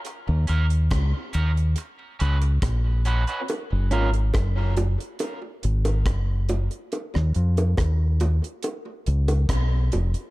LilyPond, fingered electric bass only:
\new Staff \with { instrumentName = "Fingered electric bass" } { \clef bass \time 4/4 \key dis \minor \tempo 4 = 70 r16 dis,16 dis,8 cis,16 r16 dis,8 r8 cis,8 ais,,8. r16 | r16 fis,,16 gis,,8 fis,,8. r8. gis,,8 fis,,8. r16 | r16 dis,16 eis,8 dis,8. r8. cis,8 b,,8 eis,,16 r16 | }